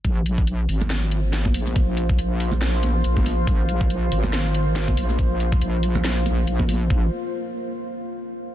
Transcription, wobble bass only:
0.05 0.67 A#1 loud
0.69 1.53 G#1 loud
1.54 2.17 A#1 loud
2.19 3.03 A#1 medium
3.05 3.46 A#1 loud
3.47 4.10 A#1 loud
4.12 4.96 G#1 loud
4.97 5.60 A#1 loud
5.62 6.89 A#1 medium
6.90 7.10 A#1 loud

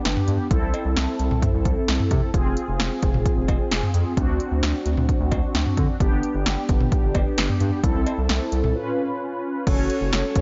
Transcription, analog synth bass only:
0.05 0.15 G1 loud
0.28 0.38 G2 loud
0.51 0.61 C2 loud
0.62 0.72 C2 medium
0.85 0.95 C2 loud
0.97 1.07 C2 loud
1.20 1.30 C2 loud
1.31 1.41 C2 medium
1.54 1.64 C2 loud
1.65 1.75 C2 loud
1.88 1.98 C2 loud
2.11 2.21 C3 loud
2.34 2.44 F1 loud
2.46 2.56 F1 loud
2.68 2.79 F1 loud
2.80 2.90 F1 loud
3.03 3.13 F1 loud
3.14 3.24 F1 loud
3.37 3.47 F1 medium
3.49 3.59 F1 loud
3.71 3.82 F1 loud
3.94 4.04 F2 loud
4.17 4.27 D2 loud
4.29 4.39 D2 loud
4.51 4.62 D2 loud
4.63 4.73 D2 loud
4.86 4.96 D2 loud
4.97 5.07 D2 medium
5.20 5.30 D2 loud
5.32 5.42 D2 loud
5.54 5.65 D2 loud
5.78 5.88 D3 loud
6.00 6.11 G1 loud
6.12 6.22 G1 loud
6.35 6.45 G1 loud
6.46 6.56 G1 loud
6.69 6.79 G1 loud
6.80 6.91 G1 medium
7.03 7.14 G1 loud
7.15 7.25 G1 loud
7.38 7.48 G1 loud
7.61 7.71 G2 medium
7.84 7.94 C2 loud
7.95 8.05 C2 loud
8.18 8.28 C2 loud
8.29 8.40 C2 loud
8.52 8.62 C2 loud
8.64 8.74 C2 loud
9.67 9.77 F#1 loud
9.78 9.88 F#1 loud
10.01 10.11 F#1 loud
10.12 10.23 F#1 loud
10.36 10.41 F#1 loud

